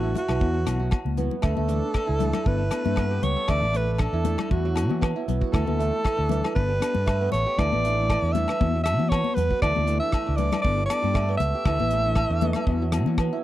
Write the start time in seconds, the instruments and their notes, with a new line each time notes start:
Already playing: fingered electric bass A1, qanun E3 A3, alto saxophone F#4
0.03 clean electric guitar A3 D4 A4, qanun E4
0.15 qanun E4, alto saxophone F#4, closed hi-hat, low conga
0.28 fingered electric bass B1, qanun E3, cross-stick, low agogo
0.40 fingered electric bass E2, clean electric guitar E3 B3 E4 F#4, qanun F#3, kick
0.54 qanun F#4
0.66 fingered electric bass B1, clean electric guitar E3 B3 E4 F#4, qanun F#4, cross-stick, closed hi-hat, high conga, low agogo
0.80 clean electric guitar B3 E4 F#4, qanun F#4
0.91 kick, cross-stick, low agogo
1.05 fingered electric bass C#2, high conga
1.17 clean electric guitar E3 B3 E4 F#4, qanun B3, closed hi-hat, low conga
1.31 low conga
1.42 fingered electric bass D2, qanun A3, clean electric guitar A3 D4 A4, alto saxophone A4, muted clean electric guitar stroke, kick, cross-stick, low agogo
1.57 fingered electric bass D2, qanun A3, high conga
1.68 clean electric guitar E3 A3 D4 A4, qanun D4, closed hi-hat
1.83 clean electric guitar A3 D4 A4
1.94 qanun D4, kick, cross-stick, low agogo
2.07 fingered electric bass C#2, qanun E4
2.19 clean electric guitar E3 A3 D4, qanun A3, closed hi-hat, low conga
2.23 clean electric guitar A4
2.33 qanun A3, cross-stick, low conga, low agogo
2.46 fingered electric bass G1, clean electric guitar B3 D4 A4, alto saxophone B4, kick
2.58 qanun A3
2.71 clean electric guitar B3 D4 A4, cross-stick, closed hi-hat, low agogo
2.85 fingered electric bass G2, qanun A3, clean electric guitar D4 A4, high conga
2.96 qanun B3, kick, cross-stick, low agogo
3.11 qanun G4
3.22 fingered electric bass C#2, qanun B3, alto saxophone C#5, closed hi-hat, low conga
3.37 qanun A4
3.48 fingered electric bass D2, clean electric guitar E3 A3 D4 A4, qanun A3, alto saxophone D5, kick, cross-stick, low agogo
3.62 fingered electric bass A1, qanun A3
3.72 clean electric guitar E3 A3 D4 A4, qanun D4, closed hi-hat
3.77 alto saxophone B4
3.87 clean electric guitar A3 D4 A4
3.93 alto saxophone B4
3.98 qanun D4, alto saxophone A4, kick, cross-stick, low agogo
4.13 fingered electric bass E2, qanun E4
4.24 clean electric guitar E3 A3 D4 A4, qanun A3, closed hi-hat, high conga, low conga
4.38 qanun A3, cross-stick, low conga, low agogo
4.50 fingered electric bass E2, clean electric guitar E3 B3 E4 F#4, alto saxophone F#4, kick
4.65 qanun F#3
4.74 clean electric guitar E3 B3 E4 F#4, cross-stick, closed hi-hat, low agogo
4.89 fingered electric bass E3, qanun F#3, clean electric guitar B3 E4 F#4, high conga
5.01 qanun B3, kick, cross-stick, low agogo
5.16 qanun E4
5.28 fingered electric bass B1, qanun B3, closed hi-hat, low conga
5.41 qanun F#4, kick
5.52 fingered electric bass D2, clean electric guitar E3 A3 A4, qanun E3, alto saxophone A4, muted clean electric guitar stroke, kick, cross-stick, low agogo
5.67 fingered electric bass D2, qanun E3, high conga
5.77 clean electric guitar E3 A3 D4 A4, qanun A3, closed hi-hat
5.92 clean electric guitar A3 A4
6.04 qanun A3, kick, cross-stick, low agogo
6.17 fingered electric bass D2, qanun D4
6.29 clean electric guitar E3 A3 D4 A4, qanun E3, closed hi-hat, high conga, low conga
6.44 qanun E3, cross-stick, low agogo
6.55 fingered electric bass G1, clean electric guitar B3 D4 A4, alto saxophone B4, kick
6.69 qanun G3
6.80 clean electric guitar B3 D4 A4, cross-stick, closed hi-hat, low agogo
6.94 fingered electric bass G2, clean electric guitar D4 A4, high conga
7.06 qanun A3, kick, cross-stick, low agogo
7.21 qanun B3
7.32 fingered electric bass A1, qanun B3, alto saxophone C#5, closed hi-hat, low conga
7.46 qanun G4
7.57 fingered electric bass D2, clean electric guitar E3 A3 D4 A4, qanun E3, alto saxophone D5, kick, cross-stick, low agogo
7.72 fingered electric bass A1, qanun E3, high conga
7.84 clean electric guitar E3 A3 D4 A4, qanun A3, closed hi-hat
7.98 clean electric guitar A3 D4 A4
8.10 qanun A3, kick, cross-stick, low agogo
8.22 fingered electric bass E2, qanun D4
8.33 clean electric guitar E3 A3 D4, qanun E3, alto saxophone E5, closed hi-hat, high conga, low conga
8.37 clean electric guitar A4
8.48 qanun E3, cross-stick, low agogo
8.60 fingered electric bass E2, clean electric guitar E3 B3 E4 F#4, kick, high conga
8.75 qanun F#3
8.84 clean electric guitar E3 B3, alto saxophone E5, cross-stick, closed hi-hat, low agogo
8.88 clean electric guitar E4 F#4
8.99 fingered electric bass E3, qanun F#3, clean electric guitar B3 E4 F#4, high conga
9.09 qanun B3, alto saxophone C#5, kick, cross-stick, low agogo
9.24 high conga
9.35 fingered electric bass E2, qanun B3, alto saxophone B4, closed hi-hat, low conga
9.51 qanun F#4, kick
9.62 fingered electric bass D2, clean electric guitar E3 A3 D4 A4, qanun E3, alto saxophone D5, kick, cross-stick, low agogo
9.75 fingered electric bass D2, qanun E3, high conga
9.87 clean electric guitar E3 A3 D4 A4, qanun A3, closed hi-hat
10.00 clean electric guitar D4 A4, alto saxophone E5, muted clean electric guitar stroke
10.12 qanun A3, kick, cross-stick, low agogo
10.26 fingered electric bass C#2, qanun D4
10.37 clean electric guitar E3 A3 D4 A4, qanun E3, alto saxophone D5, closed hi-hat, low conga
10.52 qanun E3, cross-stick, low conga, low agogo
10.62 fingered electric bass G1, clean electric guitar B3 D4, alto saxophone D5, kick
10.66 clean electric guitar A4
10.77 qanun G3
10.86 alto saxophone D5
10.90 clean electric guitar B3 D4 A4, cross-stick, closed hi-hat, low agogo
11.02 fingered electric bass G2, qanun G3, clean electric guitar A4, high conga
11.06 clean electric guitar D4
11.14 qanun A3, kick, cross-stick, low agogo
11.29 qanun B3
11.38 fingered electric bass C#2, qanun A3, alto saxophone E5, closed hi-hat, low conga
11.55 qanun G4
11.65 fingered electric bass D2, clean electric guitar E3 A3 A4, qanun E3, muted clean electric guitar stroke, kick, cross-stick, low agogo
11.80 fingered electric bass A1, qanun E3, high conga
11.91 clean electric guitar E3 A3 A4, qanun A3, muted clean electric guitar stroke, closed hi-hat
12.06 clean electric guitar A3 D4 A4
12.15 qanun A3, kick, cross-stick, low agogo
12.30 fingered electric bass E2, qanun D4
12.41 clean electric guitar E3 A3 D4 A4, qanun E3, closed hi-hat, high conga, low conga
12.53 qanun E3, cross-stick, low conga, low agogo
12.67 fingered electric bass E2, clean electric guitar E3 B3 E4 F#4, kick
12.82 qanun F#3
12.92 clean electric guitar E3 B3 E4 F#4, cross-stick, closed hi-hat, low agogo
13.06 fingered electric bass E3, qanun F#3, clean electric guitar B3 E4 F#4, high conga
13.18 qanun B3, kick, cross-stick, low agogo
13.33 qanun E4